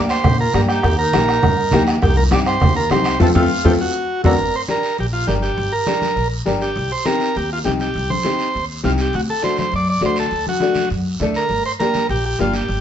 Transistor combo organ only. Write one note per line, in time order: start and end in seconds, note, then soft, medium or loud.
0.10 0.38 C5 medium
0.41 0.54 A#4 medium
0.55 0.61 A#4 medium
0.69 0.97 G4 medium
0.99 1.83 A#4 loud
2.03 2.16 G4 medium
2.17 2.24 A#4 medium
2.34 2.40 D5 medium
2.47 2.74 C5 loud
2.76 2.90 A#4 medium
2.92 3.19 C5 medium
3.22 3.28 A4 medium
3.36 3.66 F4 medium
3.66 3.73 G4 medium
3.81 4.22 F#4 medium
4.26 4.56 A#4 loud
4.56 4.62 C5 loud
4.71 4.97 A#4 medium
5.00 5.06 G4 medium
5.13 5.27 F4 medium
5.27 5.34 G4 medium
5.42 5.73 G4 medium
5.72 6.28 A#4 medium
6.62 6.92 G4 medium
6.92 7.05 C5 medium
7.06 7.36 A#4 medium
7.37 7.50 G4 medium
7.53 7.59 F4 medium
7.65 7.72 G4 medium
7.81 8.11 G4 medium
8.10 8.65 C5 medium
8.85 8.92 F4 medium
9.01 9.15 G4 medium
9.15 9.21 F#4 medium
9.30 9.43 A4 medium
9.44 9.57 C5 medium
9.59 9.74 C5 medium
9.76 9.88 D5 medium
9.90 10.02 D5 medium
10.06 10.18 C5 medium
10.20 10.46 A4 medium
10.49 10.89 F#4 medium
11.36 11.63 A#4 medium
11.66 11.72 C5 loud
11.80 12.07 A#4 medium
12.10 12.25 G4 loud
12.26 12.39 G4 medium
12.41 12.54 F4 medium
12.56 12.81 G4 medium